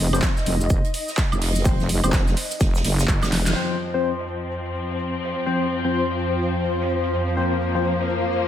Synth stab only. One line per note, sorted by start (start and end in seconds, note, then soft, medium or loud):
0.13 0.31 F3 medium
0.13 0.31 C4 medium
0.13 0.31 C5 medium
1.65 1.86 F3 medium
1.65 1.86 C4 medium
1.65 1.86 C5 medium
2.04 2.22 F3 medium
2.04 2.22 C4 medium
2.04 2.22 C5 medium
3.56 3.76 F3 medium
3.56 3.76 C4 medium
3.56 3.76 C5 medium
3.94 4.12 F3 medium
3.94 4.12 C4 medium
3.94 4.12 C5 medium
5.46 5.66 F3 medium
5.46 5.66 C4 medium
5.46 5.67 C5 medium
5.85 6.03 F3 medium
5.85 6.03 C4 medium
5.85 6.03 C5 medium
7.37 7.57 F3 medium
7.37 7.57 C4 medium
7.37 7.57 C5 medium
7.75 7.93 F3 medium
7.75 7.93 C4 medium
7.75 7.93 C5 medium